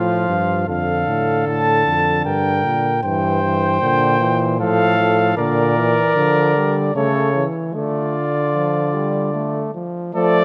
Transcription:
Already playing: bass trombone A2, trombone F3, flugelhorn F4, trumpet F5
0.29 bass trombone G2
0.68 bass trombone F2, trombone D3, flugelhorn A4, trumpet F5
1.08 bass trombone A2
1.47 bass trombone A2, trumpet A5
1.87 bass trombone F2
2.25 bass trombone G2, flugelhorn A#4, trumpet G5
2.65 bass trombone A#2
3.03 bass trombone G2, trombone E3, flugelhorn C5, trumpet G5
3.43 trombone E3
3.82 bass trombone A#2, trombone D3
4.21 trombone E3
4.60 bass trombone A2, trombone F3, flugelhorn A4, trumpet F5
4.98 trombone F3
5.37 bass trombone A#2, trombone D3, flugelhorn A#4, trumpet D5
5.77 trombone E3
6.16 bass trombone D3, trombone F3
6.57 trombone G3
6.94 bass trombone C#3, trombone A3, flugelhorn A4, trumpet C#5
7.34 trombone E3
7.73 bass trombone D3, trombone A3, flugelhorn F4, trumpet D5
8.54 trombone F3
8.94 trombone G3
9.34 trombone A3
9.75 trombone F3
10.14 bass trombone F3, trombone A3, flugelhorn A4, trumpet D5

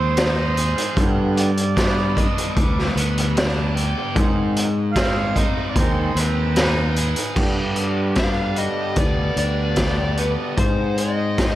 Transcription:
Already playing: fingered electric bass D#2, overdriven electric guitar G#3 C4 D#4, harmonium C5
0.17 overdriven electric guitar D#4, snare, closed hi-hat
0.57 overdriven electric guitar G#4, closed hi-hat
0.78 closed hi-hat
0.97 fingered electric bass G2, overdriven electric guitar G2, harmonium D3 G3 B3, kick, closed hi-hat
1.37 harmonium D5, closed hi-hat
1.57 closed hi-hat
1.76 overdriven electric guitar B3, kick, snare, closed hi-hat
2.15 overdriven electric guitar D4, harmonium D#5, kick, closed hi-hat
2.38 closed hi-hat
2.56 fingered electric bass D2, overdriven electric guitar G3, harmonium B4, kick, closed hi-hat
2.79 snare
2.96 fingered electric bass D2, overdriven electric guitar B3, closed hi-hat
3.18 closed hi-hat
3.35 overdriven electric guitar D4, snare, closed hi-hat
3.75 overdriven electric guitar G4, closed hi-hat
4.14 overdriven electric guitar G#2, fingered electric bass G#2, harmonium D#3 G#3 C4, kick, closed hi-hat
4.57 closed hi-hat
4.92 overdriven electric guitar C4, harmonium F5, kick, closed hi-hat
4.97 snare
5.35 overdriven electric guitar D#4, harmonium D#5, kick, closed hi-hat
5.69 harmonium D5
5.76 fingered electric bass D#2, harmonium D#3 G#3 C4 C5, overdriven electric guitar G#3, kick, closed hi-hat
6.15 fingered electric bass D#2, overdriven electric guitar C4, harmonium B4, closed hi-hat
6.56 overdriven electric guitar D#4, snare, closed hi-hat
6.96 overdriven electric guitar G#4, closed hi-hat
7.16 closed hi-hat
7.35 fingered electric bass G2, overdriven electric guitar G2, harmonium D3 G3 B3 G4 B4, kick, crash
7.76 overdriven electric guitar G3, closed hi-hat
8.15 overdriven electric guitar D4, lead electric guitar F5, kick, snare, closed hi-hat
8.56 overdriven electric guitar G3, lead electric guitar D#5, closed hi-hat
8.96 fingered electric bass D2, overdriven electric guitar B3, lead electric guitar D5, kick, closed hi-hat
9.36 fingered electric bass D2, overdriven electric guitar D4, lead electric guitar D5, closed hi-hat
9.76 overdriven electric guitar G4, kick, snare, closed hi-hat
10.17 overdriven electric guitar B3, lead electric guitar B4, closed hi-hat
10.56 fingered electric bass G#2, overdriven electric guitar G#2, harmonium G#3 C4 D#4 G#4 C5, lead electric guitar C5, kick, closed hi-hat
10.98 overdriven electric guitar G#3, lead electric guitar D#5, closed hi-hat
11.38 overdriven electric guitar D#4, kick, snare, closed hi-hat

